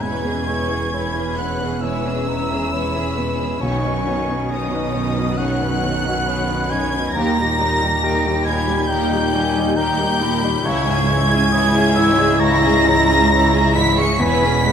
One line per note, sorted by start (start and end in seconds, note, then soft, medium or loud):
0.01 3.58 E1 medium
0.01 1.79 E2 medium
0.01 3.58 E2 medium
0.01 3.58 E3 medium
0.01 0.23 G#3 medium
0.01 3.58 C#4 medium
0.01 0.23 E4 medium
0.01 0.24 B4 medium
0.01 0.24 C#5 medium
0.01 1.37 G#5 medium
0.01 0.49 B5 medium
0.01 1.35 G#6 loud
0.24 0.61 B2 soft
0.24 0.49 E3 soft
0.24 0.49 C#4 medium
0.24 0.48 G#4 medium
0.24 0.48 B4 medium
0.47 0.83 G#3 soft
0.47 0.70 G#3 medium
0.47 0.70 E4 medium
0.47 0.70 B4 medium
0.47 0.71 C#5 soft
0.47 0.96 C#6 medium
0.71 0.93 E3 soft
0.71 0.93 C#4 soft
0.71 1.07 E4 soft
0.71 0.93 G#4 medium
0.71 0.92 B4 soft
0.93 1.14 G#3 medium
0.93 1.14 E4 soft
0.93 1.14 B4 soft
0.93 1.14 C#5 soft
0.93 1.29 C#5 medium
0.93 1.85 B5 medium
1.14 1.37 E3 soft
1.14 1.38 C#4 medium
1.14 1.52 E4 soft
1.14 1.38 G#4 soft
1.14 1.36 B4 medium
1.37 1.75 B2 soft
1.37 1.60 G#3 medium
1.37 1.60 E4 soft
1.37 1.60 B4 medium
1.37 1.60 C#5 medium
1.37 1.83 F#5 medium
1.37 1.83 F#6 medium
1.60 1.83 E3 soft
1.60 1.97 G#3 soft
1.60 1.83 C#4 soft
1.60 1.84 G#4 medium
1.60 1.83 B4 soft
1.81 3.58 E2 medium
1.81 2.03 G#3 medium
1.81 2.03 E4 medium
1.81 2.05 B4 medium
1.81 2.04 C#5 medium
1.81 3.33 E5 medium
1.81 2.30 G#5 medium
1.81 3.61 E6 medium
2.05 2.42 B2 soft
2.05 2.28 E3 medium
2.05 2.28 C#4 medium
2.05 2.28 G#4 medium
2.05 2.26 B4 medium
2.28 2.64 G#3 soft
2.28 2.50 G#3 soft
2.28 2.50 E4 soft
2.28 2.50 B4 medium
2.28 2.50 C#5 medium
2.28 2.74 A#5 medium
2.51 2.73 E3 medium
2.51 2.73 C#4 soft
2.51 2.86 E4 soft
2.51 2.73 G#4 medium
2.51 2.71 B4 medium
2.72 2.94 G#3 medium
2.72 2.95 E4 medium
2.72 2.93 B4 medium
2.72 2.94 C#5 medium
2.72 3.09 C#5 soft
2.72 3.63 B5 medium
2.94 3.18 E3 soft
2.94 3.18 C#4 soft
2.94 3.31 E4 soft
2.94 3.17 G#4 medium
2.94 3.17 B4 medium
3.17 3.53 B2 soft
3.17 3.41 G#3 medium
3.17 3.40 E4 medium
3.17 3.39 B4 medium
3.17 3.39 C#5 medium
3.40 3.62 E3 soft
3.40 3.62 G#3 medium
3.40 3.63 C#4 soft
3.40 3.62 G#4 medium
3.40 3.62 B4 soft
3.60 7.11 B1 medium
3.60 5.34 B1 medium
3.60 7.11 B2 medium
3.60 6.97 D#3 medium
3.60 3.82 C#4 medium
3.60 6.97 C#4 medium
3.60 4.45 C#5 medium
3.60 3.82 C#5 medium
3.60 5.10 G#5 medium
3.60 4.51 C#6 medium
3.64 3.84 D#3 medium
3.64 3.83 D#4 medium
3.85 4.20 F#2 soft
3.85 4.07 F#3 medium
3.85 4.07 C#4 medium
3.85 4.07 D#4 medium
3.85 4.06 B4 medium
4.06 4.28 D#3 medium
4.06 4.42 B3 medium
4.06 4.28 C#4 medium
4.06 4.28 D#4 medium
4.06 4.28 C#5 medium
4.28 4.50 F#3 medium
4.28 4.50 C#4 medium
4.28 4.50 D#4 medium
4.28 4.64 D#4 medium
4.28 4.50 B4 soft
4.50 4.71 D#3 medium
4.50 4.71 C#4 medium
4.50 4.71 D#4 medium
4.50 4.71 C#5 medium
4.50 4.86 C#5 medium
4.50 5.39 D#5 medium
4.50 5.37 D#6 medium
4.71 4.94 F#3 medium
4.71 4.93 C#4 medium
4.71 4.94 D#4 medium
4.71 5.08 D#4 medium
4.71 4.94 B4 medium
4.93 5.30 F#2 soft
4.93 5.16 D#3 medium
4.93 5.15 C#4 medium
4.93 5.16 D#4 medium
4.93 5.16 C#5 medium
5.16 5.38 F#3 medium
5.16 5.52 B3 medium
5.16 5.38 C#4 medium
5.16 5.38 D#4 medium
5.16 5.38 B4 medium
5.37 7.12 B1 medium
5.37 5.59 D#3 medium
5.37 5.59 C#4 medium
5.37 5.59 D#4 medium
5.37 5.59 C#5 medium
5.37 6.28 F#5 medium
5.37 6.71 F#5 medium
5.37 6.71 F#6 loud
5.61 5.96 F#2 medium
5.61 5.83 F#3 medium
5.61 5.83 C#4 medium
5.61 5.83 D#4 medium
5.61 5.83 B4 medium
5.82 6.05 D#3 medium
5.82 6.18 B3 medium
5.82 6.04 C#4 medium
5.82 6.05 D#4 medium
5.82 6.05 C#5 medium
6.05 6.27 F#3 medium
6.05 6.27 C#4 medium
6.05 6.27 D#4 medium
6.05 6.40 D#4 medium
6.05 6.27 B4 medium
6.26 6.48 D#3 medium
6.26 6.47 C#4 medium
6.26 6.48 D#4 medium
6.26 6.47 C#5 medium
6.26 6.62 C#5 medium
6.26 7.17 B5 medium
6.49 6.71 F#3 medium
6.49 6.71 C#4 medium
6.49 6.71 D#4 medium
6.49 6.85 D#4 medium
6.49 6.71 B4 medium
6.70 7.07 F#2 medium
6.70 6.94 C#4 medium
6.70 6.94 C#5 medium
6.70 7.13 G#5 medium
6.70 7.15 G#6 loud
6.74 6.94 D#3 medium
6.74 6.94 D#4 medium
6.94 7.16 F#3 medium
6.94 7.15 B3 medium
6.94 7.16 C#4 medium
6.94 7.15 D#4 medium
6.94 7.16 B4 medium
7.13 10.61 D#2 medium
7.13 8.87 D#2 medium
7.13 10.61 G3 medium
7.13 7.37 A#3 medium
7.13 10.61 D#4 medium
7.13 7.37 D#4 medium
7.13 7.35 G4 medium
7.13 7.36 A#4 medium
7.13 8.43 A#5 loud
7.13 8.05 A#5 medium
7.13 8.46 A#6 loud
7.37 7.72 A#2 medium
7.37 7.60 G3 medium
7.37 7.60 D#4 medium
7.37 7.60 G4 medium
7.37 7.59 G4 medium
7.59 7.94 G3 medium
7.59 7.82 A#3 medium
7.59 7.82 D#4 medium
7.59 7.82 G4 medium
7.59 7.82 A#4 medium
7.81 8.04 G3 medium
7.81 8.16 D#4 medium
7.81 8.04 D#4 medium
7.81 8.04 G4 medium
8.04 8.24 A#3 medium
8.04 8.24 D#4 medium
8.04 8.25 G4 medium
8.04 8.38 A#4 medium
8.04 8.25 A#4 medium
8.04 8.48 G5 medium
8.25 8.48 G3 medium
8.25 8.60 D#4 medium
8.25 8.47 D#4 medium
8.25 8.47 G4 medium
8.25 8.48 G4 medium
8.45 8.81 A#2 medium
8.45 8.69 A#4 medium
8.45 8.89 G#5 medium
8.45 8.92 B5 loud
8.45 8.89 G#6 loud
8.49 8.70 A#3 medium
8.49 8.70 D#4 medium
8.49 8.70 G4 medium
8.68 9.03 G3 medium
8.68 8.91 G3 medium
8.68 8.91 D#4 medium
8.68 8.91 G4 medium
8.68 8.89 G4 medium
8.87 10.61 D#2 medium
8.87 9.10 G4 medium
8.87 9.11 A#4 medium
8.87 9.76 G5 loud
8.87 9.35 A#5 medium
8.87 9.75 G6 loud
8.92 9.11 A#3 medium
8.92 9.11 D#4 medium
9.11 9.46 A#2 medium
9.11 9.34 G3 medium
9.11 9.35 G4 medium
9.15 9.35 D#4 medium
9.34 9.69 G3 medium
9.34 9.56 A#3 medium
9.34 9.56 D#4 medium
9.34 9.57 G4 medium
9.34 9.57 A#4 medium
9.34 9.78 G#5 medium
9.56 9.77 G3 medium
9.56 9.91 D#4 medium
9.56 9.79 D#4 medium
9.56 9.77 G4 medium
9.76 9.98 A#3 medium
9.76 9.98 D#4 medium
9.76 9.98 G4 medium
9.76 9.98 A#4 medium
9.76 10.13 A#4 medium
9.76 10.36 G5 loud
9.76 10.20 A#5 medium
9.76 10.63 G6 loud
9.99 10.21 G3 medium
9.99 10.21 D#4 medium
9.99 10.35 D#4 medium
9.99 10.21 G4 medium
10.21 10.56 A#2 medium
10.21 10.43 A#3 medium
10.21 10.43 D#4 medium
10.21 10.43 G4 medium
10.21 10.44 A#4 medium
10.21 10.67 B5 medium
10.42 10.64 G3 medium
10.42 10.65 G3 medium
10.42 10.65 D#4 medium
10.42 10.64 G4 medium
10.42 10.66 G4 medium
10.63 14.16 C#2 loud
10.63 14.16 C#2 medium
10.63 12.37 C#2 medium
10.63 10.85 E3 medium
10.63 14.16 G#3 medium
10.63 10.84 E4 medium
10.63 14.15 E4 loud
10.63 10.86 E4 medium
10.63 10.86 C#5 medium
10.63 12.41 G#5 loud
10.63 11.54 C#6 loud
10.63 12.41 G#6 loud
10.86 11.22 G#2 medium
10.86 11.08 G#3 medium
10.86 11.08 C#4 medium
10.86 11.10 G#4 medium
10.86 11.10 E5 medium
11.08 11.30 E3 medium
11.08 11.44 G#3 medium
11.08 11.30 E4 medium
11.08 11.31 E4 medium
11.08 11.31 C#5 medium
11.30 11.53 G#3 medium
11.30 11.53 C#4 medium
11.30 11.66 E4 medium
11.30 11.53 G#4 medium
11.30 11.53 E5 medium
11.52 11.72 E3 medium
11.52 11.73 E4 medium
11.52 11.73 C#5 medium
11.52 11.88 C#5 medium
11.52 11.76 D#6 loud
11.74 11.97 G#3 medium
11.74 11.97 C#4 medium
11.74 12.10 E4 medium
11.74 11.97 G#4 medium
11.74 11.97 E5 medium
11.95 12.32 G#2 medium
11.95 12.19 E3 medium
11.95 12.19 E4 medium
11.95 12.41 E6 loud
11.99 12.20 E4 medium
11.99 12.20 C#5 medium
12.18 12.40 G#3 medium
12.18 12.54 G#3 medium
12.18 12.41 C#4 medium
12.18 12.42 G#4 medium
12.18 12.42 E5 medium
12.39 14.16 C#2 medium
12.39 12.62 E3 medium
12.39 12.62 E4 medium
12.39 12.63 E4 medium
12.39 13.77 A#5 loud
12.39 12.83 C#6 loud
12.39 13.75 A#6 loud
12.44 12.63 C#5 medium
12.63 12.98 G#2 medium
12.63 12.85 G#3 medium
12.63 12.85 C#4 medium
12.63 12.86 G#4 medium
12.63 12.86 E5 medium
12.84 13.08 E3 medium
12.84 13.20 G#3 medium
12.84 13.08 E4 medium
12.84 13.89 A#5 loud
12.88 13.09 E4 medium
12.88 13.09 C#5 medium
13.07 13.30 G#3 medium
13.07 13.30 C#4 medium
13.07 13.43 E4 medium
13.07 13.31 G#4 medium
13.07 13.30 E5 medium
13.31 13.52 E3 medium
13.31 13.52 E4 medium
13.31 13.66 C#5 medium
13.31 13.52 C#5 medium
13.53 13.76 G#3 medium
13.53 13.76 C#4 medium
13.53 13.89 E4 medium
13.53 13.76 G#4 medium
13.53 13.76 E5 medium
13.75 14.11 G#2 medium
13.75 13.98 E3 medium
13.75 13.98 E4 medium
13.75 13.98 C#5 medium
13.75 14.00 B5 loud
13.75 13.97 B6 loud
13.97 14.20 G#3 medium
13.97 14.20 C#4 medium
13.97 14.22 G#4 medium
13.97 14.22 E5 medium
13.97 14.21 C#6 loud
13.97 14.20 C#7 loud
14.19 14.72 E1 loud
14.19 14.72 E2 medium
14.19 14.72 E2 loud
14.19 14.72 G#3 loud
14.19 14.41 B3 medium
14.19 14.72 C#4 loud
14.19 14.42 E4 medium
14.19 14.42 B4 medium
14.19 14.42 C#5 medium
14.19 14.66 G#5 medium
14.19 14.72 B5 loud
14.19 14.72 B6 loud
14.42 14.72 B2 medium
14.42 14.66 G#3 medium
14.42 14.66 C#4 medium
14.42 14.66 G#4 medium
14.42 14.64 B4 medium
14.64 14.72 G#3 medium
14.64 14.72 B3 medium
14.64 14.72 E4 medium
14.64 14.72 B4 medium
14.64 14.72 C#5 medium
14.64 14.72 F#5 medium